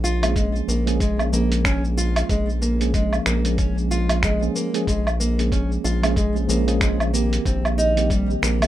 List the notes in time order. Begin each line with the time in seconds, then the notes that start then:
Already playing: A#1
0.04 F4, cabasa
0.22 F3 G#3 A#3 C#4 G#4, closed hi-hat, cabasa, low woodblock
0.36 G#3, kick, closed hi-hat, cabasa
0.56 cabasa
0.68 A#1 A#3, cabasa
0.86 F3 G#3 A#3 C#4 G#4, closed hi-hat, cabasa
1.00 G#3, kick, closed hi-hat, cabasa
1.18 F3 G#3 A#3 C#4, cabasa, low woodblock
1.22 G#4
1.33 A#1 A#3, cabasa
1.52 closed hi-hat, cabasa
1.65 C#4, finger snap, kick, closed hi-hat, cabasa
1.85 cabasa
1.97 F4, cabasa
2.16 closed hi-hat, cabasa, low woodblock
2.29 A#1 G#3, kick, closed hi-hat, cabasa
2.49 cabasa
2.62 A#3, cabasa
2.80 F3 G#3 A#3 C#4 G#4, closed hi-hat, cabasa
2.94 G#3, kick, closed hi-hat, cabasa
3.13 cabasa, low woodblock
3.26 A#1 A#3, finger snap, cabasa
3.43 F3 G#3 A#3 C#4 G#4, closed hi-hat, cabasa
3.58 C#4, kick, closed hi-hat, cabasa
3.78 cabasa
3.91 F4, cabasa
4.09 closed hi-hat, cabasa, low woodblock
4.23 G#3, finger snap, kick, closed hi-hat, cabasa
4.41 F3 G#3 A#3 C#4 G#4, cabasa
4.56 A#3, cabasa
4.73 F3 G#3 A#3 C#4 G#4, closed hi-hat, cabasa
4.87 A#1 G#3, kick, closed hi-hat, cabasa
5.07 cabasa, low woodblock
5.20 A#3, cabasa
5.37 F3 G#3 A#3 C#4 G#4, closed hi-hat, cabasa
5.52 C#4, kick, closed hi-hat, cabasa
5.72 cabasa
5.84 A#1 F4, cabasa
6.02 F3 G#3 A#3 C#4 G#4, closed hi-hat, cabasa, low woodblock
6.16 G#3, kick, closed hi-hat, cabasa
6.34 F3 G#3 A#3 C#4 G#4, cabasa
6.47 A#1 F3 G#3 A#3 C#4 G#4, cabasa
6.66 F3 G#3 A#3 C#4 G#4, closed hi-hat, cabasa
6.81 G#3, finger snap, kick, closed hi-hat, cabasa
7.00 cabasa, low woodblock
7.11 D#3 A#3 C4, cabasa
7.15 G4
7.33 closed hi-hat, cabasa
7.45 A#1 C4, kick, closed hi-hat, cabasa
7.65 cabasa, low woodblock
7.78 D#4, cabasa
7.96 D#3 G3 A#3 C4 G4, closed hi-hat, cabasa
8.10 G3, kick, closed hi-hat, cabasa
8.30 cabasa
8.42 A#1 A#3, finger snap, cabasa
8.59 D#3 G3 A#3 C4, closed hi-hat, cabasa, low woodblock
8.63 G4